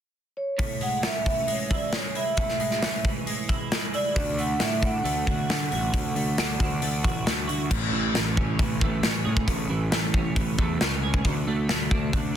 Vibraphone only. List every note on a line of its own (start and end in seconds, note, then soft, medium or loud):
0.37 0.79 C#5 medium
0.82 1.05 F#5 medium
1.05 1.25 E5 medium
1.27 1.50 E5 medium
1.51 1.67 C#5 medium
1.67 1.72 E5 medium
1.74 1.94 D5 medium
2.17 3.01 E5 medium
3.94 4.35 D5 medium
4.39 4.62 F#5 medium
4.61 4.84 E5 medium
4.84 7.24 F#5 medium